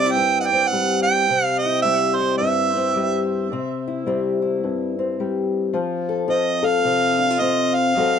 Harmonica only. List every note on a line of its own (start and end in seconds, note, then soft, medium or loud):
0.00 0.13 D5 loud
0.12 0.40 G5 medium
0.40 0.48 F#5 medium
0.46 0.69 G5 loud
0.68 1.02 F#5 loud
1.03 1.45 G5 loud
1.45 1.60 F5 loud
1.58 1.81 D#5 medium
1.82 2.18 E5 medium
2.16 2.37 C5 medium
2.38 3.25 E5 medium
6.30 6.67 D#5 medium
6.65 7.42 F5 medium
7.40 7.76 D#5 medium
7.74 8.19 F5 medium